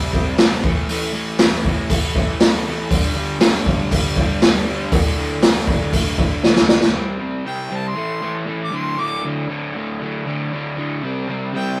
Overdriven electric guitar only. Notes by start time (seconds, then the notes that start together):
Already playing: C3 G3 C4
0.12 C3 G3 C4
0.36 C3 G3 C4
0.64 A2 E3 A3
0.89 A2 E3 A3
1.13 A2 E3 A3
1.40 A2 E3 A3
1.66 A2 E3 A3
1.90 A2 E3 A3
2.15 A2 E3 A3
2.40 A2 E3 A3
2.66 A2 E3 A3
2.91 G2 D3 G3
3.15 G2 D3 G3
3.40 G2 D3 G3
3.66 G2 D3 G3
3.92 G2 D3 G3
4.18 G2 D3 G3
4.43 G2 D3 G3
4.67 G2 D3 G3
4.93 D2 A2 D3
5.17 D2 A2 D3
5.43 D2 A2 D3
5.68 D2 A2 D3
5.93 D2 A2 D3
6.18 D2 A2 D3
6.45 D2 A2 D3
6.68 D2 A2 D3
6.94 C3 G3 C4
7.19 C3 G3 C4
7.45 C3 G3 C4
7.70 C3 G3 C4
7.94 A2 E3 A3
8.21 A2 E3 A3
8.46 A2 E3 A3
8.72 D2 A2 D3
8.98 D2 A2 D3
9.23 D2 A2 D3
9.48 D2 A2 D3
9.74 D2 A2 D3
10.00 D2 A2 D3
10.25 D2 A2 D3
10.51 D2 A2 D3
10.76 D2 A2 D3
11.02 C3 G3 C4
11.28 C3 G3 C4
11.53 C3 G3 C4